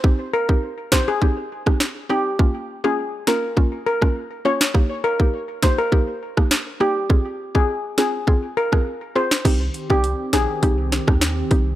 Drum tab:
CC |----------------|----------------|----------------|----------------|
HH |----------------|----------------|----------------|----------------|
SD |------o----ro---|------o----r---o|------o----ro---|------o----r---o|
BD |o--o--o-o--o----|o-------o--o----|o--o--o-o--o----|o--o----o--o----|

CC |x---------------|
HH |x-x-x-x-x-x-x-x-|
SD |------o---oro---|
BD |o--o----o--o--o-|